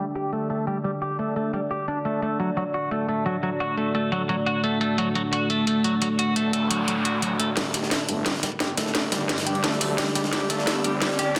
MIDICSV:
0, 0, Header, 1, 7, 480
1, 0, Start_track
1, 0, Tempo, 344828
1, 935, Time_signature, 4, 2, 24, 8
1, 15863, End_track
2, 0, Start_track
2, 0, Title_t, "Ambient pad"
2, 0, Program_c, 0, 92
2, 0, Note_on_c, 0, 62, 80
2, 0, Note_on_c, 0, 74, 92
2, 0, Note_on_c, 0, 78, 81
2, 2798, Note_off_c, 0, 62, 0
2, 2854, Note_on_c, 0, 57, 84
2, 2854, Note_on_c, 0, 62, 78
2, 10479, Note_off_c, 0, 57, 0
2, 10479, Note_off_c, 0, 62, 0
2, 10479, Note_off_c, 0, 74, 0
2, 10480, Note_off_c, 0, 78, 0
2, 10532, Note_on_c, 0, 74, 96
2, 10533, Note_on_c, 0, 62, 83
2, 10534, Note_on_c, 0, 67, 83
2, 15863, Note_off_c, 0, 62, 0
2, 15863, Note_off_c, 0, 67, 0
2, 15863, Note_off_c, 0, 74, 0
2, 15863, End_track
3, 0, Start_track
3, 0, Title_t, "Clean electric guitar"
3, 0, Program_c, 1, 27
3, 215, Note_on_c, 1, 67, 73
3, 419, Note_off_c, 1, 67, 0
3, 454, Note_on_c, 1, 57, 73
3, 659, Note_off_c, 1, 57, 0
3, 695, Note_on_c, 1, 57, 79
3, 899, Note_off_c, 1, 57, 0
3, 935, Note_on_c, 1, 55, 97
3, 1072, Note_off_c, 1, 55, 0
3, 1175, Note_on_c, 1, 55, 101
3, 1257, Note_off_c, 1, 55, 0
3, 1416, Note_on_c, 1, 67, 71
3, 1620, Note_off_c, 1, 67, 0
3, 1655, Note_on_c, 1, 57, 74
3, 1860, Note_off_c, 1, 57, 0
3, 1896, Note_on_c, 1, 57, 80
3, 2100, Note_off_c, 1, 57, 0
3, 2136, Note_on_c, 1, 55, 71
3, 2218, Note_off_c, 1, 55, 0
3, 2376, Note_on_c, 1, 67, 74
3, 2580, Note_off_c, 1, 67, 0
3, 2616, Note_on_c, 1, 62, 77
3, 2752, Note_off_c, 1, 62, 0
3, 2855, Note_on_c, 1, 57, 80
3, 3060, Note_off_c, 1, 57, 0
3, 3096, Note_on_c, 1, 57, 78
3, 3300, Note_off_c, 1, 57, 0
3, 3336, Note_on_c, 1, 54, 90
3, 3472, Note_off_c, 1, 54, 0
3, 3576, Note_on_c, 1, 54, 98
3, 3657, Note_off_c, 1, 54, 0
3, 3816, Note_on_c, 1, 66, 80
3, 4020, Note_off_c, 1, 66, 0
3, 4055, Note_on_c, 1, 57, 73
3, 4260, Note_off_c, 1, 57, 0
3, 4295, Note_on_c, 1, 57, 71
3, 4500, Note_off_c, 1, 57, 0
3, 4535, Note_on_c, 1, 54, 105
3, 4671, Note_off_c, 1, 54, 0
3, 4774, Note_on_c, 1, 54, 96
3, 4857, Note_off_c, 1, 54, 0
3, 5015, Note_on_c, 1, 66, 76
3, 5219, Note_off_c, 1, 66, 0
3, 5255, Note_on_c, 1, 57, 71
3, 5459, Note_off_c, 1, 57, 0
3, 5495, Note_on_c, 1, 57, 71
3, 5699, Note_off_c, 1, 57, 0
3, 5735, Note_on_c, 1, 54, 97
3, 5871, Note_off_c, 1, 54, 0
3, 5974, Note_on_c, 1, 54, 95
3, 6057, Note_off_c, 1, 54, 0
3, 6215, Note_on_c, 1, 66, 73
3, 6419, Note_off_c, 1, 66, 0
3, 6454, Note_on_c, 1, 57, 81
3, 6659, Note_off_c, 1, 57, 0
3, 6695, Note_on_c, 1, 57, 81
3, 6900, Note_off_c, 1, 57, 0
3, 6935, Note_on_c, 1, 54, 96
3, 7071, Note_off_c, 1, 54, 0
3, 7176, Note_on_c, 1, 54, 95
3, 7257, Note_off_c, 1, 54, 0
3, 7415, Note_on_c, 1, 66, 73
3, 7620, Note_off_c, 1, 66, 0
3, 7655, Note_on_c, 1, 57, 82
3, 7859, Note_off_c, 1, 57, 0
3, 7895, Note_on_c, 1, 57, 71
3, 8099, Note_off_c, 1, 57, 0
3, 8135, Note_on_c, 1, 54, 93
3, 8271, Note_off_c, 1, 54, 0
3, 8375, Note_on_c, 1, 54, 104
3, 8457, Note_off_c, 1, 54, 0
3, 8614, Note_on_c, 1, 66, 80
3, 8819, Note_off_c, 1, 66, 0
3, 8854, Note_on_c, 1, 57, 77
3, 9059, Note_off_c, 1, 57, 0
3, 9094, Note_on_c, 1, 57, 72
3, 9299, Note_off_c, 1, 57, 0
3, 9335, Note_on_c, 1, 54, 99
3, 9471, Note_off_c, 1, 54, 0
3, 9576, Note_on_c, 1, 54, 100
3, 9657, Note_off_c, 1, 54, 0
3, 9814, Note_on_c, 1, 66, 73
3, 9951, Note_off_c, 1, 66, 0
3, 10054, Note_on_c, 1, 54, 75
3, 10191, Note_off_c, 1, 54, 0
3, 10294, Note_on_c, 1, 57, 81
3, 10431, Note_off_c, 1, 57, 0
3, 10534, Note_on_c, 1, 55, 102
3, 10616, Note_off_c, 1, 55, 0
3, 10774, Note_on_c, 1, 67, 75
3, 10979, Note_off_c, 1, 67, 0
3, 11015, Note_on_c, 1, 57, 74
3, 11220, Note_off_c, 1, 57, 0
3, 11255, Note_on_c, 1, 57, 76
3, 11459, Note_off_c, 1, 57, 0
3, 11495, Note_on_c, 1, 55, 102
3, 11631, Note_off_c, 1, 55, 0
3, 11735, Note_on_c, 1, 55, 101
3, 11817, Note_off_c, 1, 55, 0
3, 11974, Note_on_c, 1, 67, 74
3, 12179, Note_off_c, 1, 67, 0
3, 12214, Note_on_c, 1, 57, 80
3, 12419, Note_off_c, 1, 57, 0
3, 12454, Note_on_c, 1, 57, 81
3, 12659, Note_off_c, 1, 57, 0
3, 12694, Note_on_c, 1, 55, 100
3, 12831, Note_off_c, 1, 55, 0
3, 12933, Note_on_c, 1, 55, 98
3, 13016, Note_off_c, 1, 55, 0
3, 13174, Note_on_c, 1, 67, 78
3, 13379, Note_off_c, 1, 67, 0
3, 13414, Note_on_c, 1, 57, 85
3, 13619, Note_off_c, 1, 57, 0
3, 13654, Note_on_c, 1, 57, 75
3, 13859, Note_off_c, 1, 57, 0
3, 13895, Note_on_c, 1, 55, 99
3, 14031, Note_off_c, 1, 55, 0
3, 14134, Note_on_c, 1, 55, 106
3, 14216, Note_off_c, 1, 55, 0
3, 14374, Note_on_c, 1, 67, 83
3, 14579, Note_off_c, 1, 67, 0
3, 14613, Note_on_c, 1, 57, 76
3, 14819, Note_off_c, 1, 57, 0
3, 14854, Note_on_c, 1, 57, 73
3, 15059, Note_off_c, 1, 57, 0
3, 15094, Note_on_c, 1, 55, 102
3, 15231, Note_off_c, 1, 55, 0
3, 15335, Note_on_c, 1, 55, 104
3, 15417, Note_off_c, 1, 55, 0
3, 15575, Note_on_c, 1, 67, 75
3, 15780, Note_off_c, 1, 67, 0
3, 15815, Note_on_c, 1, 57, 76
3, 15863, Note_off_c, 1, 57, 0
3, 15863, End_track
4, 0, Start_track
4, 0, Title_t, "Detuned saw bass"
4, 0, Program_c, 2, 39
4, 10535, Note_on_c, 2, 31, 96
4, 10996, Note_off_c, 2, 31, 0
4, 11255, Note_on_c, 2, 31, 93
4, 11716, Note_off_c, 2, 31, 0
4, 11976, Note_on_c, 2, 31, 99
4, 12436, Note_off_c, 2, 31, 0
4, 12455, Note_on_c, 2, 31, 98
4, 12916, Note_off_c, 2, 31, 0
4, 12935, Note_on_c, 2, 43, 99
4, 13396, Note_off_c, 2, 43, 0
4, 13414, Note_on_c, 2, 38, 92
4, 13876, Note_off_c, 2, 38, 0
4, 14375, Note_on_c, 2, 31, 93
4, 14836, Note_off_c, 2, 31, 0
4, 15096, Note_on_c, 2, 31, 96
4, 15556, Note_off_c, 2, 31, 0
4, 15815, Note_on_c, 2, 31, 93
4, 15863, Note_off_c, 2, 31, 0
4, 15863, End_track
5, 0, Start_track
5, 0, Title_t, "Noise sweep"
5, 0, Program_c, 3, 103
5, 8615, Note_on_c, 3, 60, 71
5, 10535, Note_off_c, 3, 60, 0
5, 15863, End_track
6, 0, Start_track
6, 0, Title_t, "Riser"
6, 0, Program_c, 4, 103
6, 10535, Note_on_c, 4, 60, 77
6, 15863, Note_off_c, 4, 60, 0
6, 15863, End_track
7, 0, Start_track
7, 0, Title_t, "Drums"
7, 215, Note_on_c, 9, 42, 91
7, 354, Note_off_c, 9, 42, 0
7, 454, Note_on_c, 9, 42, 76
7, 594, Note_off_c, 9, 42, 0
7, 695, Note_on_c, 9, 42, 86
7, 834, Note_off_c, 9, 42, 0
7, 935, Note_on_c, 9, 42, 77
7, 1074, Note_off_c, 9, 42, 0
7, 1175, Note_on_c, 9, 42, 85
7, 1314, Note_off_c, 9, 42, 0
7, 1415, Note_on_c, 9, 42, 76
7, 1555, Note_off_c, 9, 42, 0
7, 1656, Note_on_c, 9, 42, 88
7, 1795, Note_off_c, 9, 42, 0
7, 1896, Note_on_c, 9, 42, 76
7, 2035, Note_off_c, 9, 42, 0
7, 2135, Note_on_c, 9, 42, 91
7, 2274, Note_off_c, 9, 42, 0
7, 2375, Note_on_c, 9, 42, 75
7, 2515, Note_off_c, 9, 42, 0
7, 2616, Note_on_c, 9, 42, 84
7, 2755, Note_off_c, 9, 42, 0
7, 2856, Note_on_c, 9, 42, 73
7, 2995, Note_off_c, 9, 42, 0
7, 3095, Note_on_c, 9, 42, 84
7, 3234, Note_off_c, 9, 42, 0
7, 3336, Note_on_c, 9, 42, 71
7, 3475, Note_off_c, 9, 42, 0
7, 3576, Note_on_c, 9, 42, 88
7, 3715, Note_off_c, 9, 42, 0
7, 3816, Note_on_c, 9, 42, 76
7, 3955, Note_off_c, 9, 42, 0
7, 4055, Note_on_c, 9, 42, 91
7, 4194, Note_off_c, 9, 42, 0
7, 4295, Note_on_c, 9, 42, 73
7, 4434, Note_off_c, 9, 42, 0
7, 4535, Note_on_c, 9, 42, 83
7, 4674, Note_off_c, 9, 42, 0
7, 4775, Note_on_c, 9, 42, 72
7, 4914, Note_off_c, 9, 42, 0
7, 5016, Note_on_c, 9, 42, 84
7, 5155, Note_off_c, 9, 42, 0
7, 5255, Note_on_c, 9, 42, 72
7, 5394, Note_off_c, 9, 42, 0
7, 5495, Note_on_c, 9, 42, 88
7, 5634, Note_off_c, 9, 42, 0
7, 5735, Note_on_c, 9, 42, 75
7, 5874, Note_off_c, 9, 42, 0
7, 5974, Note_on_c, 9, 42, 89
7, 6113, Note_off_c, 9, 42, 0
7, 6215, Note_on_c, 9, 42, 74
7, 6354, Note_off_c, 9, 42, 0
7, 6454, Note_on_c, 9, 42, 83
7, 6593, Note_off_c, 9, 42, 0
7, 6695, Note_on_c, 9, 42, 74
7, 6834, Note_off_c, 9, 42, 0
7, 6934, Note_on_c, 9, 42, 89
7, 7074, Note_off_c, 9, 42, 0
7, 7175, Note_on_c, 9, 42, 75
7, 7314, Note_off_c, 9, 42, 0
7, 7414, Note_on_c, 9, 42, 88
7, 7554, Note_off_c, 9, 42, 0
7, 7654, Note_on_c, 9, 42, 78
7, 7794, Note_off_c, 9, 42, 0
7, 7894, Note_on_c, 9, 42, 92
7, 8034, Note_off_c, 9, 42, 0
7, 8135, Note_on_c, 9, 42, 73
7, 8274, Note_off_c, 9, 42, 0
7, 8375, Note_on_c, 9, 42, 86
7, 8514, Note_off_c, 9, 42, 0
7, 8615, Note_on_c, 9, 42, 77
7, 8754, Note_off_c, 9, 42, 0
7, 8855, Note_on_c, 9, 42, 89
7, 8994, Note_off_c, 9, 42, 0
7, 9094, Note_on_c, 9, 42, 78
7, 9233, Note_off_c, 9, 42, 0
7, 9334, Note_on_c, 9, 42, 95
7, 9473, Note_off_c, 9, 42, 0
7, 9575, Note_on_c, 9, 42, 80
7, 9714, Note_off_c, 9, 42, 0
7, 9815, Note_on_c, 9, 42, 93
7, 9954, Note_off_c, 9, 42, 0
7, 10055, Note_on_c, 9, 42, 77
7, 10194, Note_off_c, 9, 42, 0
7, 10294, Note_on_c, 9, 42, 91
7, 10434, Note_off_c, 9, 42, 0
7, 10534, Note_on_c, 9, 38, 47
7, 10534, Note_on_c, 9, 42, 79
7, 10535, Note_on_c, 9, 51, 82
7, 10673, Note_off_c, 9, 38, 0
7, 10673, Note_off_c, 9, 42, 0
7, 10675, Note_off_c, 9, 51, 0
7, 10775, Note_on_c, 9, 38, 47
7, 10775, Note_on_c, 9, 42, 94
7, 10775, Note_on_c, 9, 51, 67
7, 10895, Note_off_c, 9, 38, 0
7, 10895, Note_on_c, 9, 38, 37
7, 10914, Note_off_c, 9, 42, 0
7, 10914, Note_off_c, 9, 51, 0
7, 11015, Note_off_c, 9, 38, 0
7, 11015, Note_on_c, 9, 38, 49
7, 11015, Note_on_c, 9, 42, 84
7, 11015, Note_on_c, 9, 51, 87
7, 11154, Note_off_c, 9, 51, 0
7, 11155, Note_off_c, 9, 38, 0
7, 11155, Note_off_c, 9, 42, 0
7, 11255, Note_on_c, 9, 42, 100
7, 11255, Note_on_c, 9, 51, 64
7, 11394, Note_off_c, 9, 42, 0
7, 11395, Note_off_c, 9, 51, 0
7, 11495, Note_on_c, 9, 38, 52
7, 11495, Note_on_c, 9, 42, 82
7, 11495, Note_on_c, 9, 51, 87
7, 11615, Note_off_c, 9, 38, 0
7, 11615, Note_on_c, 9, 38, 44
7, 11634, Note_off_c, 9, 42, 0
7, 11635, Note_off_c, 9, 51, 0
7, 11735, Note_off_c, 9, 38, 0
7, 11735, Note_on_c, 9, 38, 102
7, 11735, Note_on_c, 9, 42, 100
7, 11735, Note_on_c, 9, 51, 77
7, 11874, Note_off_c, 9, 38, 0
7, 11874, Note_off_c, 9, 42, 0
7, 11874, Note_off_c, 9, 51, 0
7, 11974, Note_on_c, 9, 38, 53
7, 11974, Note_on_c, 9, 42, 82
7, 11975, Note_off_c, 9, 38, 0
7, 11975, Note_on_c, 9, 38, 102
7, 11975, Note_on_c, 9, 51, 78
7, 12114, Note_off_c, 9, 38, 0
7, 12114, Note_off_c, 9, 42, 0
7, 12114, Note_off_c, 9, 51, 0
7, 12214, Note_on_c, 9, 42, 93
7, 12215, Note_on_c, 9, 38, 100
7, 12215, Note_on_c, 9, 51, 76
7, 12335, Note_off_c, 9, 38, 0
7, 12335, Note_on_c, 9, 38, 36
7, 12353, Note_off_c, 9, 42, 0
7, 12354, Note_off_c, 9, 51, 0
7, 12455, Note_off_c, 9, 38, 0
7, 12455, Note_on_c, 9, 38, 54
7, 12455, Note_on_c, 9, 42, 79
7, 12455, Note_on_c, 9, 51, 85
7, 12594, Note_off_c, 9, 38, 0
7, 12594, Note_off_c, 9, 42, 0
7, 12594, Note_off_c, 9, 51, 0
7, 12695, Note_on_c, 9, 38, 102
7, 12695, Note_on_c, 9, 42, 96
7, 12695, Note_on_c, 9, 51, 81
7, 12834, Note_off_c, 9, 38, 0
7, 12834, Note_off_c, 9, 51, 0
7, 12835, Note_off_c, 9, 42, 0
7, 12935, Note_on_c, 9, 51, 58
7, 12936, Note_on_c, 9, 38, 54
7, 12936, Note_on_c, 9, 42, 81
7, 13055, Note_off_c, 9, 38, 0
7, 13055, Note_off_c, 9, 51, 0
7, 13055, Note_on_c, 9, 38, 103
7, 13055, Note_on_c, 9, 51, 79
7, 13075, Note_off_c, 9, 42, 0
7, 13176, Note_on_c, 9, 42, 101
7, 13194, Note_off_c, 9, 38, 0
7, 13194, Note_off_c, 9, 51, 0
7, 13295, Note_on_c, 9, 51, 60
7, 13316, Note_off_c, 9, 42, 0
7, 13415, Note_off_c, 9, 51, 0
7, 13415, Note_on_c, 9, 51, 85
7, 13416, Note_on_c, 9, 38, 55
7, 13416, Note_on_c, 9, 42, 85
7, 13535, Note_off_c, 9, 38, 0
7, 13535, Note_on_c, 9, 38, 44
7, 13554, Note_off_c, 9, 51, 0
7, 13555, Note_off_c, 9, 42, 0
7, 13655, Note_on_c, 9, 42, 99
7, 13655, Note_on_c, 9, 46, 81
7, 13674, Note_off_c, 9, 38, 0
7, 13794, Note_off_c, 9, 46, 0
7, 13795, Note_off_c, 9, 42, 0
7, 13894, Note_on_c, 9, 38, 118
7, 13894, Note_on_c, 9, 51, 87
7, 13896, Note_off_c, 9, 38, 0
7, 13896, Note_on_c, 9, 38, 56
7, 13896, Note_on_c, 9, 42, 81
7, 14015, Note_off_c, 9, 38, 0
7, 14015, Note_on_c, 9, 38, 47
7, 14034, Note_off_c, 9, 51, 0
7, 14035, Note_off_c, 9, 42, 0
7, 14135, Note_off_c, 9, 38, 0
7, 14135, Note_on_c, 9, 38, 51
7, 14135, Note_on_c, 9, 42, 95
7, 14135, Note_on_c, 9, 51, 68
7, 14255, Note_off_c, 9, 38, 0
7, 14255, Note_on_c, 9, 38, 49
7, 14274, Note_off_c, 9, 42, 0
7, 14274, Note_off_c, 9, 51, 0
7, 14374, Note_off_c, 9, 38, 0
7, 14374, Note_on_c, 9, 38, 57
7, 14374, Note_on_c, 9, 42, 81
7, 14375, Note_on_c, 9, 51, 88
7, 14513, Note_off_c, 9, 38, 0
7, 14513, Note_off_c, 9, 42, 0
7, 14514, Note_off_c, 9, 51, 0
7, 14615, Note_on_c, 9, 38, 47
7, 14615, Note_on_c, 9, 42, 91
7, 14615, Note_on_c, 9, 51, 67
7, 14735, Note_off_c, 9, 38, 0
7, 14735, Note_on_c, 9, 38, 37
7, 14754, Note_off_c, 9, 42, 0
7, 14754, Note_off_c, 9, 51, 0
7, 14854, Note_off_c, 9, 38, 0
7, 14854, Note_on_c, 9, 38, 112
7, 14854, Note_on_c, 9, 42, 78
7, 14854, Note_on_c, 9, 51, 89
7, 14994, Note_off_c, 9, 38, 0
7, 14994, Note_off_c, 9, 42, 0
7, 14994, Note_off_c, 9, 51, 0
7, 15094, Note_on_c, 9, 51, 66
7, 15095, Note_on_c, 9, 42, 98
7, 15233, Note_off_c, 9, 51, 0
7, 15234, Note_off_c, 9, 42, 0
7, 15334, Note_on_c, 9, 38, 64
7, 15334, Note_on_c, 9, 42, 85
7, 15334, Note_on_c, 9, 51, 86
7, 15454, Note_off_c, 9, 38, 0
7, 15454, Note_on_c, 9, 38, 45
7, 15473, Note_off_c, 9, 42, 0
7, 15473, Note_off_c, 9, 51, 0
7, 15574, Note_off_c, 9, 38, 0
7, 15574, Note_on_c, 9, 38, 48
7, 15574, Note_on_c, 9, 51, 66
7, 15575, Note_on_c, 9, 42, 95
7, 15714, Note_off_c, 9, 38, 0
7, 15714, Note_off_c, 9, 42, 0
7, 15714, Note_off_c, 9, 51, 0
7, 15814, Note_on_c, 9, 38, 65
7, 15814, Note_on_c, 9, 42, 82
7, 15814, Note_on_c, 9, 51, 90
7, 15863, Note_off_c, 9, 38, 0
7, 15863, Note_off_c, 9, 42, 0
7, 15863, Note_off_c, 9, 51, 0
7, 15863, End_track
0, 0, End_of_file